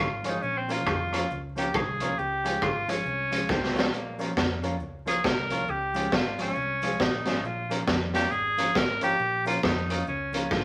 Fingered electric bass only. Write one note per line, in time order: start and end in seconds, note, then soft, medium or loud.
0.00 0.36 G#1 loud
0.43 0.87 A#1 loud
0.87 1.24 F2 medium
1.31 1.68 C#2 medium
1.75 2.12 C2 loud
2.19 2.56 C#2 loud
2.62 2.99 G#1 medium
3.05 3.43 C2 medium
3.49 3.93 C#2 loud
3.93 4.30 A#1 loud
4.37 4.81 F2 loud
4.81 5.18 C#2 medium
5.25 5.62 C2 loud
5.68 6.06 C#2 loud
6.13 6.50 G#1 loud
6.56 6.94 C2 medium
7.00 7.23 A#1 loud
7.26 7.41 G#1 loud
7.44 7.81 A#1 loud
7.88 8.25 F2 loud
8.32 8.69 G#1 medium
8.76 9.13 G#1 loud
9.20 9.57 A#1 medium
9.64 10.01 F2 loud
10.08 10.45 C#2 medium
10.51 10.64 G#1 loud